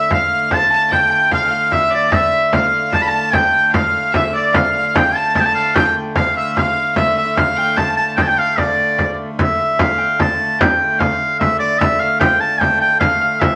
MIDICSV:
0, 0, Header, 1, 6, 480
1, 0, Start_track
1, 0, Key_signature, -1, "minor"
1, 0, Tempo, 403226
1, 1083, Time_signature, 3, 2, 24, 8
1, 16135, End_track
2, 0, Start_track
2, 0, Title_t, "Fiddle"
2, 0, Program_c, 0, 110
2, 0, Note_on_c, 0, 76, 76
2, 130, Note_on_c, 0, 77, 77
2, 148, Note_off_c, 0, 76, 0
2, 607, Note_off_c, 0, 77, 0
2, 617, Note_on_c, 0, 81, 91
2, 834, Note_off_c, 0, 81, 0
2, 852, Note_on_c, 0, 81, 86
2, 1067, Note_off_c, 0, 81, 0
2, 1074, Note_on_c, 0, 79, 80
2, 1561, Note_on_c, 0, 77, 80
2, 1579, Note_off_c, 0, 79, 0
2, 2045, Note_on_c, 0, 76, 87
2, 2063, Note_off_c, 0, 77, 0
2, 2271, Note_on_c, 0, 74, 77
2, 2289, Note_off_c, 0, 76, 0
2, 2495, Note_off_c, 0, 74, 0
2, 2502, Note_on_c, 0, 76, 76
2, 2961, Note_off_c, 0, 76, 0
2, 2985, Note_on_c, 0, 77, 75
2, 3443, Note_off_c, 0, 77, 0
2, 3466, Note_on_c, 0, 81, 95
2, 3619, Note_off_c, 0, 81, 0
2, 3626, Note_on_c, 0, 81, 79
2, 3933, Note_off_c, 0, 81, 0
2, 3943, Note_on_c, 0, 79, 80
2, 4402, Note_off_c, 0, 79, 0
2, 4418, Note_on_c, 0, 77, 78
2, 4905, Note_on_c, 0, 76, 81
2, 4923, Note_off_c, 0, 77, 0
2, 5159, Note_on_c, 0, 74, 69
2, 5177, Note_off_c, 0, 76, 0
2, 5392, Note_on_c, 0, 77, 67
2, 5410, Note_off_c, 0, 74, 0
2, 5898, Note_on_c, 0, 79, 72
2, 5915, Note_off_c, 0, 77, 0
2, 6143, Note_on_c, 0, 81, 81
2, 6161, Note_off_c, 0, 79, 0
2, 6369, Note_off_c, 0, 81, 0
2, 6377, Note_on_c, 0, 81, 90
2, 6820, Note_off_c, 0, 81, 0
2, 6852, Note_on_c, 0, 79, 74
2, 6891, Note_on_c, 0, 77, 66
2, 6909, Note_off_c, 0, 79, 0
2, 6962, Note_on_c, 0, 79, 57
2, 6980, Note_off_c, 0, 77, 0
2, 7087, Note_off_c, 0, 79, 0
2, 7331, Note_on_c, 0, 77, 72
2, 7554, Note_off_c, 0, 77, 0
2, 7571, Note_on_c, 0, 76, 73
2, 7794, Note_off_c, 0, 76, 0
2, 7814, Note_on_c, 0, 77, 82
2, 8259, Note_off_c, 0, 77, 0
2, 8278, Note_on_c, 0, 76, 70
2, 8507, Note_off_c, 0, 76, 0
2, 8535, Note_on_c, 0, 76, 72
2, 8750, Note_off_c, 0, 76, 0
2, 8757, Note_on_c, 0, 77, 72
2, 9012, Note_on_c, 0, 79, 81
2, 9030, Note_off_c, 0, 77, 0
2, 9245, Note_on_c, 0, 81, 81
2, 9263, Note_off_c, 0, 79, 0
2, 9475, Note_off_c, 0, 81, 0
2, 9482, Note_on_c, 0, 81, 72
2, 9726, Note_on_c, 0, 79, 74
2, 9744, Note_off_c, 0, 81, 0
2, 9848, Note_off_c, 0, 79, 0
2, 9864, Note_on_c, 0, 79, 57
2, 9969, Note_off_c, 0, 79, 0
2, 9978, Note_on_c, 0, 77, 68
2, 10197, Note_off_c, 0, 77, 0
2, 10222, Note_on_c, 0, 74, 61
2, 10887, Note_off_c, 0, 74, 0
2, 16135, End_track
3, 0, Start_track
3, 0, Title_t, "Harp"
3, 0, Program_c, 1, 46
3, 0, Note_on_c, 1, 74, 64
3, 0, Note_on_c, 1, 76, 75
3, 128, Note_on_c, 1, 77, 79
3, 199, Note_off_c, 1, 76, 0
3, 423, Note_off_c, 1, 74, 0
3, 606, Note_on_c, 1, 81, 81
3, 835, Note_off_c, 1, 81, 0
3, 840, Note_on_c, 1, 81, 83
3, 1078, Note_on_c, 1, 79, 80
3, 1300, Note_off_c, 1, 79, 0
3, 1305, Note_on_c, 1, 79, 85
3, 1557, Note_off_c, 1, 77, 0
3, 1562, Note_on_c, 1, 77, 75
3, 1748, Note_off_c, 1, 79, 0
3, 1752, Note_on_c, 1, 79, 62
3, 1786, Note_off_c, 1, 77, 0
3, 1791, Note_on_c, 1, 77, 81
3, 2034, Note_on_c, 1, 76, 72
3, 2106, Note_off_c, 1, 77, 0
3, 2286, Note_on_c, 1, 74, 70
3, 2516, Note_off_c, 1, 76, 0
3, 2520, Note_on_c, 1, 76, 81
3, 2565, Note_off_c, 1, 81, 0
3, 3003, Note_on_c, 1, 77, 79
3, 3075, Note_off_c, 1, 76, 0
3, 3502, Note_on_c, 1, 81, 79
3, 3601, Note_off_c, 1, 79, 0
3, 3674, Note_off_c, 1, 81, 0
3, 3679, Note_on_c, 1, 81, 85
3, 3981, Note_on_c, 1, 79, 85
3, 4447, Note_off_c, 1, 77, 0
3, 4451, Note_on_c, 1, 77, 76
3, 4484, Note_off_c, 1, 74, 0
3, 4941, Note_on_c, 1, 76, 68
3, 5012, Note_off_c, 1, 77, 0
3, 5184, Note_on_c, 1, 74, 69
3, 5404, Note_off_c, 1, 81, 0
3, 5423, Note_on_c, 1, 77, 77
3, 5494, Note_off_c, 1, 76, 0
3, 5646, Note_off_c, 1, 77, 0
3, 5651, Note_on_c, 1, 77, 78
3, 5723, Note_off_c, 1, 77, 0
3, 5727, Note_on_c, 1, 77, 63
3, 5757, Note_off_c, 1, 77, 0
3, 5762, Note_on_c, 1, 77, 77
3, 5830, Note_off_c, 1, 79, 0
3, 5888, Note_on_c, 1, 79, 81
3, 6133, Note_on_c, 1, 81, 82
3, 6371, Note_off_c, 1, 81, 0
3, 6376, Note_on_c, 1, 81, 80
3, 6489, Note_off_c, 1, 81, 0
3, 6494, Note_on_c, 1, 81, 75
3, 6848, Note_off_c, 1, 79, 0
3, 6853, Note_on_c, 1, 79, 83
3, 7338, Note_off_c, 1, 77, 0
3, 7343, Note_on_c, 1, 77, 76
3, 7382, Note_off_c, 1, 74, 0
3, 7834, Note_off_c, 1, 77, 0
3, 7839, Note_on_c, 1, 77, 74
3, 8218, Note_off_c, 1, 81, 0
3, 8311, Note_on_c, 1, 76, 68
3, 8382, Note_off_c, 1, 77, 0
3, 8534, Note_off_c, 1, 76, 0
3, 8539, Note_on_c, 1, 76, 74
3, 8701, Note_off_c, 1, 79, 0
3, 8783, Note_on_c, 1, 77, 72
3, 8854, Note_off_c, 1, 76, 0
3, 9018, Note_on_c, 1, 79, 75
3, 9271, Note_on_c, 1, 81, 75
3, 9504, Note_off_c, 1, 81, 0
3, 9509, Note_on_c, 1, 81, 76
3, 9733, Note_off_c, 1, 79, 0
3, 9738, Note_on_c, 1, 79, 69
3, 9858, Note_off_c, 1, 79, 0
3, 9862, Note_on_c, 1, 79, 72
3, 9977, Note_off_c, 1, 77, 0
3, 9982, Note_on_c, 1, 77, 71
3, 10217, Note_on_c, 1, 74, 57
3, 11176, Note_on_c, 1, 76, 71
3, 11233, Note_off_c, 1, 81, 0
3, 11247, Note_off_c, 1, 77, 0
3, 11420, Note_off_c, 1, 76, 0
3, 11425, Note_on_c, 1, 76, 73
3, 11662, Note_on_c, 1, 77, 73
3, 11711, Note_off_c, 1, 79, 0
3, 11734, Note_off_c, 1, 76, 0
3, 11879, Note_on_c, 1, 79, 75
3, 12131, Note_on_c, 1, 81, 75
3, 12416, Note_off_c, 1, 74, 0
3, 12599, Note_off_c, 1, 79, 0
3, 12604, Note_on_c, 1, 79, 77
3, 13073, Note_off_c, 1, 77, 0
3, 13078, Note_on_c, 1, 77, 79
3, 13562, Note_on_c, 1, 76, 71
3, 13634, Note_off_c, 1, 77, 0
3, 13806, Note_on_c, 1, 74, 80
3, 13856, Note_off_c, 1, 81, 0
3, 14033, Note_off_c, 1, 76, 0
3, 14037, Note_on_c, 1, 76, 77
3, 14270, Note_on_c, 1, 77, 79
3, 14341, Note_off_c, 1, 76, 0
3, 14453, Note_off_c, 1, 79, 0
3, 14517, Note_on_c, 1, 79, 82
3, 14768, Note_on_c, 1, 81, 87
3, 14997, Note_off_c, 1, 79, 0
3, 15002, Note_on_c, 1, 79, 80
3, 15236, Note_off_c, 1, 79, 0
3, 15241, Note_on_c, 1, 79, 79
3, 15487, Note_off_c, 1, 77, 0
3, 15492, Note_on_c, 1, 77, 81
3, 15723, Note_off_c, 1, 77, 0
3, 15728, Note_on_c, 1, 77, 74
3, 15957, Note_on_c, 1, 76, 76
3, 16004, Note_off_c, 1, 74, 0
3, 16028, Note_off_c, 1, 77, 0
3, 16135, Note_off_c, 1, 76, 0
3, 16135, Note_off_c, 1, 79, 0
3, 16135, Note_off_c, 1, 81, 0
3, 16135, End_track
4, 0, Start_track
4, 0, Title_t, "Shawm"
4, 0, Program_c, 2, 111
4, 160, Note_on_c, 2, 77, 94
4, 635, Note_on_c, 2, 81, 93
4, 652, Note_off_c, 2, 77, 0
4, 1100, Note_off_c, 2, 81, 0
4, 1108, Note_on_c, 2, 79, 94
4, 1544, Note_off_c, 2, 79, 0
4, 1585, Note_on_c, 2, 77, 96
4, 2067, Note_on_c, 2, 76, 82
4, 2085, Note_off_c, 2, 77, 0
4, 2297, Note_off_c, 2, 76, 0
4, 2317, Note_on_c, 2, 74, 86
4, 2556, Note_on_c, 2, 76, 81
4, 2573, Note_off_c, 2, 74, 0
4, 3022, Note_off_c, 2, 76, 0
4, 3043, Note_on_c, 2, 77, 83
4, 3508, Note_on_c, 2, 81, 88
4, 3526, Note_off_c, 2, 77, 0
4, 3598, Note_on_c, 2, 83, 74
4, 3615, Note_off_c, 2, 81, 0
4, 3676, Note_on_c, 2, 81, 98
4, 3694, Note_off_c, 2, 83, 0
4, 3989, Note_on_c, 2, 79, 88
4, 4007, Note_off_c, 2, 81, 0
4, 4443, Note_off_c, 2, 79, 0
4, 4450, Note_on_c, 2, 77, 81
4, 4897, Note_off_c, 2, 77, 0
4, 4946, Note_on_c, 2, 76, 83
4, 5051, Note_off_c, 2, 76, 0
4, 5183, Note_on_c, 2, 74, 78
4, 5400, Note_off_c, 2, 74, 0
4, 5423, Note_on_c, 2, 77, 86
4, 5907, Note_on_c, 2, 79, 90
4, 5925, Note_off_c, 2, 77, 0
4, 6132, Note_on_c, 2, 81, 85
4, 6150, Note_off_c, 2, 79, 0
4, 6361, Note_off_c, 2, 81, 0
4, 6369, Note_on_c, 2, 81, 92
4, 6433, Note_on_c, 2, 79, 77
4, 6451, Note_off_c, 2, 81, 0
4, 6494, Note_on_c, 2, 81, 87
4, 6512, Note_off_c, 2, 79, 0
4, 6599, Note_off_c, 2, 81, 0
4, 6606, Note_on_c, 2, 77, 80
4, 6843, Note_on_c, 2, 79, 86
4, 6861, Note_off_c, 2, 77, 0
4, 7087, Note_off_c, 2, 79, 0
4, 7333, Note_on_c, 2, 77, 78
4, 7555, Note_off_c, 2, 77, 0
4, 7578, Note_on_c, 2, 76, 75
4, 7814, Note_on_c, 2, 77, 80
4, 7832, Note_off_c, 2, 76, 0
4, 8292, Note_off_c, 2, 77, 0
4, 8301, Note_on_c, 2, 76, 80
4, 8772, Note_on_c, 2, 77, 82
4, 8790, Note_off_c, 2, 76, 0
4, 9251, Note_on_c, 2, 81, 91
4, 9268, Note_off_c, 2, 77, 0
4, 9482, Note_off_c, 2, 81, 0
4, 9489, Note_on_c, 2, 81, 91
4, 9597, Note_off_c, 2, 81, 0
4, 9722, Note_on_c, 2, 79, 85
4, 9792, Note_on_c, 2, 81, 66
4, 9810, Note_off_c, 2, 79, 0
4, 9852, Note_on_c, 2, 79, 87
4, 9870, Note_off_c, 2, 81, 0
4, 9981, Note_on_c, 2, 77, 82
4, 9999, Note_off_c, 2, 79, 0
4, 10228, Note_on_c, 2, 74, 69
4, 10246, Note_off_c, 2, 77, 0
4, 10938, Note_off_c, 2, 74, 0
4, 11214, Note_on_c, 2, 76, 81
4, 11678, Note_on_c, 2, 77, 80
4, 11696, Note_off_c, 2, 76, 0
4, 12141, Note_off_c, 2, 77, 0
4, 12161, Note_on_c, 2, 81, 88
4, 12590, Note_off_c, 2, 81, 0
4, 12625, Note_on_c, 2, 79, 85
4, 13093, Note_on_c, 2, 77, 92
4, 13111, Note_off_c, 2, 79, 0
4, 13556, Note_off_c, 2, 77, 0
4, 13563, Note_on_c, 2, 76, 89
4, 13786, Note_off_c, 2, 76, 0
4, 13799, Note_on_c, 2, 74, 90
4, 14034, Note_on_c, 2, 76, 95
4, 14051, Note_off_c, 2, 74, 0
4, 14287, Note_on_c, 2, 77, 84
4, 14305, Note_off_c, 2, 76, 0
4, 14519, Note_off_c, 2, 77, 0
4, 14526, Note_on_c, 2, 79, 88
4, 14767, Note_on_c, 2, 81, 89
4, 14785, Note_off_c, 2, 79, 0
4, 15005, Note_on_c, 2, 79, 93
4, 15023, Note_off_c, 2, 81, 0
4, 15241, Note_off_c, 2, 79, 0
4, 15252, Note_on_c, 2, 79, 87
4, 15465, Note_off_c, 2, 79, 0
4, 15472, Note_on_c, 2, 77, 90
4, 15957, Note_on_c, 2, 76, 91
4, 15975, Note_off_c, 2, 77, 0
4, 16135, Note_off_c, 2, 76, 0
4, 16135, End_track
5, 0, Start_track
5, 0, Title_t, "Hurdy-gurdy"
5, 0, Program_c, 3, 110
5, 0, Note_on_c, 3, 50, 68
5, 0, Note_on_c, 3, 57, 66
5, 5400, Note_off_c, 3, 50, 0
5, 5400, Note_on_c, 3, 50, 72
5, 5407, Note_off_c, 3, 57, 0
5, 5407, Note_on_c, 3, 57, 74
5, 11165, Note_off_c, 3, 50, 0
5, 11165, Note_on_c, 3, 50, 74
5, 11166, Note_off_c, 3, 57, 0
5, 11166, Note_on_c, 3, 57, 77
5, 16135, Note_off_c, 3, 50, 0
5, 16135, Note_off_c, 3, 57, 0
5, 16135, End_track
6, 0, Start_track
6, 0, Title_t, "Frame drum"
6, 126, Note_on_c, 9, 64, 88
6, 245, Note_off_c, 9, 64, 0
6, 367, Note_on_c, 9, 64, 23
6, 486, Note_off_c, 9, 64, 0
6, 607, Note_on_c, 9, 64, 77
6, 726, Note_off_c, 9, 64, 0
6, 1094, Note_on_c, 9, 64, 71
6, 1213, Note_off_c, 9, 64, 0
6, 1565, Note_on_c, 9, 64, 75
6, 1684, Note_off_c, 9, 64, 0
6, 1807, Note_on_c, 9, 64, 22
6, 1926, Note_off_c, 9, 64, 0
6, 2045, Note_on_c, 9, 64, 70
6, 2164, Note_off_c, 9, 64, 0
6, 2521, Note_on_c, 9, 64, 92
6, 2640, Note_off_c, 9, 64, 0
6, 3010, Note_on_c, 9, 64, 83
6, 3129, Note_off_c, 9, 64, 0
6, 3253, Note_on_c, 9, 64, 22
6, 3372, Note_off_c, 9, 64, 0
6, 3483, Note_on_c, 9, 64, 78
6, 3602, Note_off_c, 9, 64, 0
6, 3967, Note_on_c, 9, 64, 89
6, 4086, Note_off_c, 9, 64, 0
6, 4451, Note_on_c, 9, 64, 86
6, 4570, Note_off_c, 9, 64, 0
6, 4692, Note_on_c, 9, 64, 24
6, 4811, Note_off_c, 9, 64, 0
6, 4928, Note_on_c, 9, 64, 85
6, 5047, Note_off_c, 9, 64, 0
6, 5408, Note_on_c, 9, 64, 94
6, 5528, Note_off_c, 9, 64, 0
6, 5898, Note_on_c, 9, 64, 99
6, 6017, Note_off_c, 9, 64, 0
6, 6134, Note_on_c, 9, 64, 26
6, 6253, Note_off_c, 9, 64, 0
6, 6372, Note_on_c, 9, 64, 79
6, 6491, Note_off_c, 9, 64, 0
6, 6852, Note_on_c, 9, 64, 101
6, 6971, Note_off_c, 9, 64, 0
6, 7328, Note_on_c, 9, 64, 93
6, 7447, Note_off_c, 9, 64, 0
6, 7577, Note_on_c, 9, 64, 24
6, 7696, Note_off_c, 9, 64, 0
6, 7818, Note_on_c, 9, 64, 80
6, 7937, Note_off_c, 9, 64, 0
6, 8287, Note_on_c, 9, 64, 86
6, 8406, Note_off_c, 9, 64, 0
6, 8776, Note_on_c, 9, 64, 85
6, 8895, Note_off_c, 9, 64, 0
6, 9015, Note_on_c, 9, 64, 21
6, 9134, Note_off_c, 9, 64, 0
6, 9253, Note_on_c, 9, 64, 71
6, 9372, Note_off_c, 9, 64, 0
6, 9733, Note_on_c, 9, 64, 84
6, 9852, Note_off_c, 9, 64, 0
6, 9973, Note_on_c, 9, 64, 25
6, 10092, Note_off_c, 9, 64, 0
6, 10211, Note_on_c, 9, 64, 76
6, 10331, Note_off_c, 9, 64, 0
6, 10695, Note_on_c, 9, 64, 76
6, 10814, Note_off_c, 9, 64, 0
6, 11177, Note_on_c, 9, 64, 92
6, 11296, Note_off_c, 9, 64, 0
6, 11656, Note_on_c, 9, 64, 94
6, 11775, Note_off_c, 9, 64, 0
6, 11900, Note_on_c, 9, 64, 26
6, 12019, Note_off_c, 9, 64, 0
6, 12138, Note_on_c, 9, 64, 88
6, 12257, Note_off_c, 9, 64, 0
6, 12626, Note_on_c, 9, 64, 109
6, 12745, Note_off_c, 9, 64, 0
6, 13098, Note_on_c, 9, 64, 89
6, 13217, Note_off_c, 9, 64, 0
6, 13344, Note_on_c, 9, 64, 28
6, 13463, Note_off_c, 9, 64, 0
6, 13581, Note_on_c, 9, 64, 82
6, 13700, Note_off_c, 9, 64, 0
6, 14060, Note_on_c, 9, 64, 96
6, 14179, Note_off_c, 9, 64, 0
6, 14531, Note_on_c, 9, 64, 98
6, 14650, Note_off_c, 9, 64, 0
6, 14768, Note_on_c, 9, 64, 28
6, 14887, Note_off_c, 9, 64, 0
6, 15012, Note_on_c, 9, 64, 78
6, 15131, Note_off_c, 9, 64, 0
6, 15483, Note_on_c, 9, 64, 103
6, 15602, Note_off_c, 9, 64, 0
6, 15731, Note_on_c, 9, 64, 33
6, 15851, Note_off_c, 9, 64, 0
6, 15968, Note_on_c, 9, 64, 97
6, 16087, Note_off_c, 9, 64, 0
6, 16135, End_track
0, 0, End_of_file